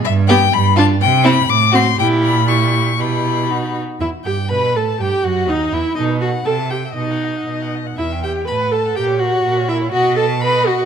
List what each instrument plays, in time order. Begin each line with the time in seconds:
0.04 cello G2, violin E5
0.27 viola B3, violin G4 G5
0.52 cello G2, violin B5
0.76 viola D4, violin F4 A5
1.01 cello C3, violin G5
1.24 viola C4, violin E4 B5
1.49 cello A2, violin D6
1.72 viola C4, violin F#4 C6
1.96 cello A#2, viola E4, violin G4 G5
2.23 violin B5
2.47 viola E4, violin G4 C#6
2.99 cello B2, viola E4, violin G4 B5
3.50 viola D#4, violin F#4
4.00 cello E2, viola E4, violin E4 E5
4.24 cello G2, viola G4, violin G4 G5
4.49 cello B2, violin B4 B5, viola B4
4.75 cello A2, violin A4 A5, viola A4
4.99 cello G2, violin G4 G5, viola G4
5.24 cello F#2, violin F#4 F#5, viola F#4
5.47 cello D#2, violin D#4 D#5, viola D#4
5.72 cello E2, violin E4 E5, viola E4
5.95 cello B2, viola D#4, violin A4 D#5
6.09 violin B4
6.21 viola F#4, violin A4 F#5
6.34 violin B4
6.45 cello C3, viola A4, violin G5 A5
6.60 violin E5
6.70 viola G4, violin G5
6.85 violin E5
6.94 cello B2, viola D#4, violin D#5
7.10 violin F#5
7.24 violin D#5
7.36 violin F#5
7.46 cello B2, violin D#5
7.62 violin F#5
7.75 violin D#5
7.86 violin F#5
7.97 cello E2, viola E4, violin E5
8.12 violin G5
8.23 viola G4, violin E5 G5
8.36 violin G5
8.47 cello A2, viola B4, violin A5 B5
8.61 violin F#5
8.72 viola A4, violin A5
8.86 violin F#5
8.96 cello A#2, viola G4, violin A#4 G5
9.08 violin C#5
9.20 viola F#4, violin A#4 F#5
9.32 violin C#5
9.44 cello A#2, violin A#4
9.56 violin C#5
9.68 viola E4, violin A#4 E5
9.81 violin C#5
9.92 cello B2, viola F#4, violin D#5 F#5
10.16 viola A4, violin A5
10.41 viola B4, violin D#5 B5
10.67 viola F#4, violin F#5